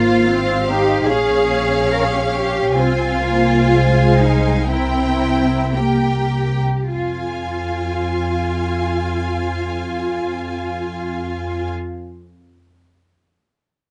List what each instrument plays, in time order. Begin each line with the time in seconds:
Already playing: double bass section G#1, viola section A#3, cello section F4, violin section C5 F5
0.30 viola section C4
0.67 viola section D#4, cello section G4
1.07 double bass section A#1, viola section C#4, cello section G#4, violin section C#5 F5
1.93 cello section A#4
2.02 cello section G#4
2.12 cello section G4
2.21 cello section G#4
2.30 cello section G4
2.74 double bass section C2, viola section C4, cello section F4, violin section C5 F5 G#5
3.21 viola section A#3
3.68 viola section G#3
4.18 cello section D#4
4.69 viola section C4, cello section E4, violin section A#4 G5
5.73 viola section A#3, cello section G4, violin section A#4 G5
6.90 double bass section F2, viola section F4, cello section F4, violin section F5 G#5